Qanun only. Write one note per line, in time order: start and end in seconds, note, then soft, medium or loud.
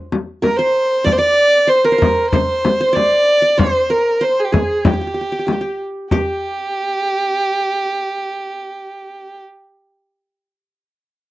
0.00 0.24 C5 medium
0.42 1.55 A#4 medium
0.59 1.64 C5 medium
1.04 1.18 D5 medium
1.18 2.17 D5 medium
1.67 1.91 C5 medium
1.84 1.98 A#4 medium
1.92 2.33 C5 medium
1.98 3.11 A#4 medium
2.33 2.80 C5 medium
2.81 3.57 C5 medium
2.93 3.42 D5 medium
3.42 4.41 D5 medium
3.58 4.21 C5 medium
3.90 5.03 A#4 medium
4.21 5.26 C5 medium
4.52 4.92 G#4 medium
4.86 4.93 G4 medium
4.93 5.01 G4 soft
5.01 5.07 G4 soft
5.07 5.14 G4 soft
5.14 5.21 G4 soft
5.21 5.32 G4 soft
5.32 5.39 G4 soft
5.39 5.46 G4 soft
5.47 5.52 G4 soft
5.53 5.61 G4 soft
5.61 6.12 G4 soft
6.12 9.66 G4 medium